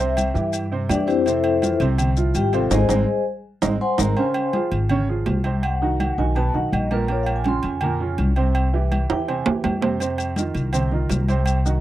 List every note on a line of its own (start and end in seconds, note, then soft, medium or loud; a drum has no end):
0.00 0.30 C2 loud
0.00 0.29 C3 medium
0.00 0.29 C4 medium
0.00 0.29 C5 loud
0.00 0.51 E5 loud
0.00 high conga soft
0.00 maracas medium
0.17 high conga loud
0.17 low agogo loud
0.17 maracas medium
0.34 0.86 G2 loud
0.34 0.65 E3 medium
0.34 0.65 E4 medium
0.34 0.65 G4 medium
0.34 high conga soft
0.34 maracas soft
0.53 high conga soft
0.53 low agogo medium
0.53 maracas medium
0.72 0.87 C3 medium
0.72 0.87 C4 medium
0.72 0.87 C5 medium
0.72 high conga soft
0.89 1.75 F2 loud
0.89 1.20 E3 medium
0.89 1.08 D4 medium
0.89 1.20 E4 medium
0.89 1.20 G4 medium
0.89 1.08 D5 medium
0.89 high conga medium
0.89 low timbale medium
0.89 low agogo loud
0.89 maracas medium
1.07 1.26 C4 medium
1.07 1.26 E4 medium
1.07 1.26 G4 medium
1.07 1.25 C5 loud
1.07 low agogo medium
1.07 maracas soft
1.26 1.57 C3 medium
1.26 1.57 C4 medium
1.26 1.78 E4 medium
1.26 1.78 A4 medium
1.26 1.78 C5 medium
1.26 1.57 C5 medium
1.26 1.77 E5 medium
1.26 high conga soft
1.26 low agogo medium
1.26 maracas medium
1.44 high conga soft
1.44 low agogo loud
1.62 1.78 E3 medium
1.62 1.78 E4 medium
1.62 1.78 F4 medium
1.62 high conga loud
1.62 low agogo medium
1.62 maracas medium
1.80 2.31 C2 loud
1.80 2.11 C3 loud
1.80 2.11 C4 loud
1.80 2.11 C5 medium
1.80 high conga soft
1.80 low agogo medium
1.80 maracas soft
1.98 high conga soft
1.98 low conga medium
1.98 low agogo loud
1.98 maracas medium
2.17 2.47 F3 medium
2.17 2.47 E4 medium
2.17 2.47 F4 medium
2.17 high conga soft
2.17 maracas medium
2.35 2.69 G#1 loud
2.35 2.54 G4 medium
2.35 2.54 G5 loud
2.35 high conga medium
2.35 low agogo medium
2.35 maracas medium
2.53 2.68 C3 medium
2.53 2.69 C4 medium
2.53 2.72 F4 medium
2.53 2.72 A4 medium
2.53 2.69 C5 loud
2.53 2.72 C5 medium
2.53 2.72 F5 medium
2.53 low agogo medium
2.53 maracas soft
2.71 2.85 G#1 loud
2.71 2.84 G#3 loud
2.71 2.84 C4 loud
2.71 2.84 D#4 loud
2.71 3.23 G#4 medium
2.71 3.23 C5 medium
2.71 3.23 D#5 medium
2.71 3.23 G#5 loud
2.71 high conga loud
2.71 high timbale loud
2.71 maracas loud
2.89 3.03 G#1 loud
2.89 3.02 G#3 loud
2.89 3.02 C4 loud
2.89 3.02 D#4 loud
2.89 high conga loud
2.89 high timbale loud
2.89 maracas loud
3.62 3.77 G#1 loud
3.62 3.74 G#3 loud
3.62 3.74 C4 loud
3.62 3.74 D#4 medium
3.62 high conga loud
3.62 high timbale loud
3.62 maracas loud
3.81 3.99 C5 medium
3.81 3.99 F#5 medium
3.81 3.99 G#5 medium
3.81 3.99 C6 loud
3.98 4.13 G#1 loud
3.98 4.11 G#3 loud
3.98 4.11 C4 loud
3.98 4.11 D#4 loud
3.98 4.17 A#4 medium
3.98 4.17 A#5 loud
3.98 high conga loud
3.98 high timbale loud
3.98 maracas loud
4.17 4.48 C#3 medium
4.17 4.48 C#4 medium
4.17 4.68 C5 medium
4.17 4.48 C5 medium
4.17 4.68 F5 medium
4.17 4.68 G#5 medium
4.17 4.68 C6 medium
4.17 high conga soft
4.17 low agogo medium
4.34 high conga soft
4.34 low agogo loud
4.53 4.84 F3 medium
4.53 4.84 F4 medium
4.53 4.84 G#4 medium
4.53 high conga loud
4.53 low agogo medium
4.72 5.23 G#1 loud
4.72 high conga soft
4.72 low agogo medium
4.89 5.05 C#3 medium
4.89 5.06 C#4 medium
4.89 5.06 C#5 medium
4.89 high conga soft
4.89 low conga medium
4.89 low agogo loud
5.09 5.39 F3 medium
5.09 5.39 F4 medium
5.09 5.39 G#4 medium
5.09 high conga soft
5.26 6.13 C2 loud
5.26 high conga medium
5.26 low timbale medium
5.26 low agogo medium
5.44 5.75 C3 medium
5.44 5.75 C4 medium
5.44 5.75 C5 medium
5.44 high conga medium
5.44 low agogo medium
5.63 6.15 F#5 loud
5.63 low agogo loud
5.82 6.12 D#3 medium
5.82 6.12 D#4 medium
5.82 6.12 F#4 medium
5.82 high conga soft
6.00 high conga loud
6.00 low agogo loud
6.18 6.52 B1 medium
6.18 6.33 D#3 medium
6.18 6.33 D#4 medium
6.18 6.34 F#4 medium
6.18 6.36 G#5 loud
6.18 high conga soft
6.35 6.51 B2 medium
6.35 6.52 B3 medium
6.35 6.52 B4 medium
6.35 6.54 A5 loud
6.35 high conga soft
6.35 low agogo medium
6.54 6.72 B1 medium
6.54 6.84 D#3 medium
6.54 6.85 D#4 medium
6.54 6.85 F#4 medium
6.54 6.72 F#5 medium
6.54 high conga soft
6.72 7.58 A#1 loud
6.72 6.91 D#5 medium
6.72 high conga medium
6.72 low agogo loud
6.91 7.06 A#2 medium
6.91 7.06 A#3 medium
6.91 7.06 A#4 medium
6.91 7.09 B4 loud
6.91 high conga medium
6.91 low agogo medium
7.08 7.39 A#2 medium
7.08 7.39 A#3 medium
7.08 7.40 A#4 medium
7.08 7.22 C#5 medium
7.08 low agogo medium
7.23 7.34 F5 medium
7.23 low agogo loud
7.28 high conga soft
7.36 7.47 G#5 loud
7.44 7.75 C#3 medium
7.44 7.76 C#4 medium
7.44 7.76 F4 medium
7.44 7.65 C6 loud
7.44 high conga loud
7.44 low agogo medium
7.63 8.15 F2 loud
7.63 8.15 G#5 medium
7.63 high conga soft
7.63 low agogo medium
7.81 7.98 A#2 medium
7.81 7.98 A#3 medium
7.81 7.98 A#4 medium
7.81 high conga soft
7.81 low conga medium
7.81 low agogo loud
8.00 8.30 C#3 medium
8.00 8.31 C#4 medium
8.00 8.31 F4 medium
8.00 high conga soft
8.18 9.04 C2 loud
8.18 high conga medium
8.18 low agogo medium
8.36 8.67 C3 medium
8.36 8.67 C4 medium
8.36 8.67 C5 medium
8.36 low agogo medium
8.55 high conga soft
8.55 low agogo loud
8.74 9.04 E3 medium
8.74 9.04 E4 medium
8.74 9.04 G4 medium
8.74 high conga soft
8.92 high conga loud
8.92 low agogo loud
9.10 9.44 E2 medium
9.10 9.25 E3 medium
9.10 9.25 E4 medium
9.10 9.25 G4 medium
9.10 9.28 G5 loud
9.10 high conga soft
9.10 high timbale loud
9.28 9.43 C3 medium
9.28 9.43 C4 medium
9.28 9.43 C5 medium
9.28 9.46 G#5 loud
9.28 high conga soft
9.28 low agogo medium
9.46 9.64 E2 medium
9.46 9.76 E3 medium
9.46 9.76 E4 medium
9.46 9.76 G4 medium
9.46 high conga soft
9.46 low timbale loud
9.64 10.50 F2 loud
9.64 high conga medium
9.64 low timbale medium
9.64 low agogo loud
9.81 9.97 C3 medium
9.81 9.97 C4 medium
9.81 9.97 C5 medium
9.81 high conga medium
9.81 low timbale medium
9.81 low agogo medium
10.00 10.31 C3 medium
10.00 10.31 C4 medium
10.00 10.31 C5 medium
10.00 high conga soft
10.00 low agogo medium
10.00 maracas medium
10.18 high conga soft
10.18 low agogo loud
10.18 maracas medium
10.36 10.67 D#3 medium
10.36 10.67 D#4 medium
10.36 10.68 F4 medium
10.36 high conga loud
10.36 low agogo medium
10.36 maracas medium
10.55 11.06 C2 loud
10.55 high conga soft
10.55 low agogo medium
10.55 maracas soft
10.73 10.88 C3 medium
10.73 10.88 C4 medium
10.73 10.89 C5 medium
10.73 high conga soft
10.73 low conga medium
10.73 low agogo loud
10.73 maracas medium
10.91 11.22 D#3 medium
10.91 11.22 D#4 medium
10.91 11.22 F4 medium
10.91 high conga soft
10.91 low conga medium
11.10 11.80 C2 loud
11.10 high conga medium
11.10 low timbale medium
11.10 low agogo medium
11.10 maracas medium
11.28 11.58 C3 medium
11.28 11.58 C4 medium
11.28 11.59 C5 medium
11.28 high conga medium
11.28 low agogo medium
11.28 maracas soft
11.46 high conga soft
11.46 low agogo loud
11.46 maracas medium
11.66 11.80 D#3 medium
11.66 11.80 D#4 medium
11.66 11.80 F#4 medium
11.66 high conga soft
11.66 maracas medium